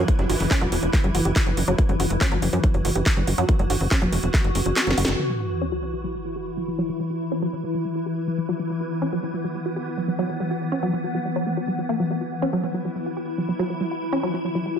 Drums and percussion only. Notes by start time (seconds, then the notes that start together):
0.08 kick, closed hi-hat
0.19 closed hi-hat
0.30 open hi-hat
0.40 open hi-hat
0.51 kick, clap, closed hi-hat
0.61 closed hi-hat
0.72 open hi-hat
0.83 closed hi-hat
0.93 kick, clap, closed hi-hat
1.04 closed hi-hat
1.15 open hi-hat
1.25 closed hi-hat
1.36 kick, clap, closed hi-hat
1.47 closed hi-hat
1.57 open hi-hat
1.68 closed hi-hat
1.78 kick, closed hi-hat
1.89 closed hi-hat
2.00 open hi-hat
2.10 closed hi-hat
2.21 kick, clap, closed hi-hat
2.32 closed hi-hat
2.42 open hi-hat
2.53 closed hi-hat
2.64 kick, closed hi-hat
2.74 closed hi-hat
2.85 open hi-hat
2.95 closed hi-hat
3.06 kick, clap, closed hi-hat
3.17 closed hi-hat
3.27 open hi-hat
3.38 closed hi-hat
3.49 kick, closed hi-hat
3.59 closed hi-hat
3.70 open hi-hat
3.81 open hi-hat
3.91 kick, clap, closed hi-hat
4.02 closed hi-hat
4.12 open hi-hat
4.23 closed hi-hat
4.34 kick, clap, closed hi-hat
4.44 closed hi-hat
4.55 open hi-hat
4.66 closed hi-hat
4.76 snare, clap, closed hi-hat
4.87 snare, closed hi-hat
4.98 open hi-hat
5.05 snare, closed hi-hat